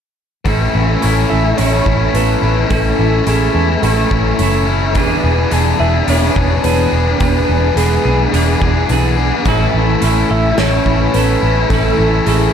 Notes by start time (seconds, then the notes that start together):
0.45 A1 A2 E3 A3 C#4 E4 A4, kick, open hi-hat
0.75 A1
1.01 A1 E3 A3 C#4 E4 A4, open hi-hat
1.29 A1 C#4 E4 A4 E5
1.57 A1 A2 E3 A3 C#4 E4 A4 C#5, open hi-hat
1.86 A1 A3 C#4 E4, kick
2.13 A1 A3 C#4 E4 A4 B4, open hi-hat
2.42 A1 A3 C#4 E4
2.69 A1 A2 E3 A3 C#4 E4 A4, kick, open hi-hat
2.99 A1
3.26 A1 E3 A3 C#4 E4 G#4 A4, open hi-hat
3.54 E2 C#4 E4 A4
3.82 A1 A2 E3 A3 C#4 E4 A4, open hi-hat
4.10 A1 A3 C#4 E4, kick
4.39 F#1 A3 C#4 E4 A4, open hi-hat
4.67 A3 C#4 E4
4.94 E1 E3 B3 D4 G#4, kick, open hi-hat
5.24 E1
5.51 E1 E3 B3 D4 G#4, open hi-hat
5.79 E1 B3 D4 G#4 E5
6.07 E1 E3 B3 D4 G#4 C#5, open hi-hat
6.35 E1 B3 D4 G#4, kick
6.63 E1 E3 B3 D4 G#4 B4, open hi-hat
6.92 E1 B3 D4 G#4
7.19 E1 E3 B3 D4 G#4 B4, kick, open hi-hat
7.49 E1
7.75 E1 E3 B3 D4 G#4, open hi-hat
8.04 B1 B3 D4 G#4
8.32 E1 E3 B3 D4 G#4, open hi-hat
8.61 E1 B3 D4 G#4, kick
8.89 B1 E3 B3 D4 G#4, open hi-hat
9.17 B3 D4 G#4
9.45 A1 A2 E3 A3 C#4 E4 A4, kick, open hi-hat
9.74 A1
10.01 A1 E3 A3 C#4 E4 A4, open hi-hat
10.30 A1 A3 C#4 E4 A4 E5
10.57 A1 A2 E3 A3 C#4 E4 A4 C#5, snare, open hi-hat
10.86 A1 A3 C#4 E4, kick
11.14 A1 A3 C#4 E4 A4 B4, open hi-hat
11.42 A1 A3 C#4 E4
11.69 A1 A2 E3 A3 C#4 E4 A4, kick, open hi-hat
11.73 A4
11.99 A1
12.26 A1 E3 A3 C#4 E4 G#4 A4, open hi-hat